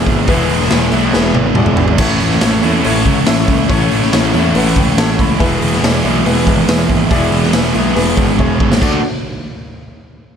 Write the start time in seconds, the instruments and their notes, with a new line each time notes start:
Already playing: distorted electric guitar E2 B2 E3 G#3 B3 E4, upright piano E4 G#4 B4
0.06 picked electric bass G#1, kick, open hi-hat
0.28 picked electric bass E1, distorted electric guitar E2 B2 E3 G#3 B3 E4, upright piano E4 G#4 B4, kick, open hi-hat
0.49 picked electric bass E1, open hi-hat
0.60 snare
0.70 picked electric bass E1, upright piano E4 G#4 B4, snare, open hi-hat
0.92 picked electric bass B1, distorted electric guitar E2 B2 E3 G#3 B3 E4, open hi-hat
1.13 picked electric bass E1, upright piano E4 G#4 B4, snare
1.35 picked electric bass G#1, high tom
1.55 picked electric bass E1, upright piano E4 G#4 D5 F#5, mid tom
1.66 mid tom
1.77 picked electric bass G#1, upright piano E5, floor tom
1.88 floor tom
1.98 picked electric bass A1, distorted electric guitar A2 E3 A3 C#4 E4, string machine A3 C#4 E4 C#5, upright piano E4 A4 C#5, kick, crash
2.20 picked electric bass A1, open hi-hat
2.31 snare
2.41 picked electric bass A1, upright piano E4 A4 C#5, snare, open hi-hat
2.62 picked electric bass E2, distorted electric guitar A2 E3 A3 C#4 E4, open hi-hat
2.84 picked electric bass A1, upright piano E4 A4 C#5, open hi-hat
3.06 picked electric bass C#2, kick, open hi-hat
3.26 picked electric bass A1, upright piano E4 A4 E5, snare, open hi-hat
3.48 picked electric bass C#2, kick, open hi-hat
3.69 picked electric bass A1, distorted electric guitar A2 E3 A3 C#4 E4, upright piano E4 A4 C#5, kick, open hi-hat
3.91 picked electric bass A1, open hi-hat
4.02 snare
4.12 picked electric bass A1, upright piano E4 A4 C#5, snare, open hi-hat
4.33 picked electric bass E2, distorted electric guitar A2 E3 A3 C#4 E4, upright piano E5, open hi-hat
4.55 picked electric bass A1, upright piano E4 A4 B4 F#5, open hi-hat
4.76 picked electric bass C#2, upright piano G5, kick, open hi-hat
4.98 picked electric bass A1, upright piano E4 A4 C#5 A5, snare, open hi-hat
5.19 picked electric bass C#2, upright piano B5, kick, open hi-hat
5.39 picked electric bass E1, distorted electric guitar E2 B2 E3 G#3 B3 E4, string machine G#3 B3 E4 B4, upright piano E4 G#4 B4, kick, open hi-hat
5.62 picked electric bass E1, open hi-hat
5.73 snare
5.83 picked electric bass E1, upright piano E4 G#4 D5, snare, open hi-hat
6.04 picked electric bass B1, distorted electric guitar E2 B2 E3 G#3 B3 E4, open hi-hat
6.26 picked electric bass E1, upright piano E4 G#4 B4, open hi-hat
6.47 picked electric bass G#1, kick, open hi-hat
6.68 picked electric bass E1, upright piano E4 G#4 B4, snare, open hi-hat
6.89 picked electric bass G#1, kick, open hi-hat
7.11 picked electric bass E1, distorted electric guitar E2 B2 E3 G#3 B3 E4, upright piano E4 G#4 D5, kick, open hi-hat
7.32 picked electric bass E1, open hi-hat
7.43 snare
7.53 picked electric bass E1, upright piano E4 G#4 B4, snare, open hi-hat
7.74 picked electric bass B1, distorted electric guitar E2 B2 E3 G#3 B3 E4, open hi-hat
7.96 picked electric bass E1, upright piano E4 G#4 B4, open hi-hat
8.17 picked electric bass G#1, kick, open hi-hat
8.39 picked electric bass E1, upright piano E4 G#4 C#5, kick
8.60 picked electric bass G#1, kick
8.72 snare
8.82 picked electric bass D2, distorted electric guitar D3 D4 F#4 A4, overdriven electric guitar F#3 A3, string machine A3 D4 F#4 D5, upright piano F#4 A4 D5, kick, crash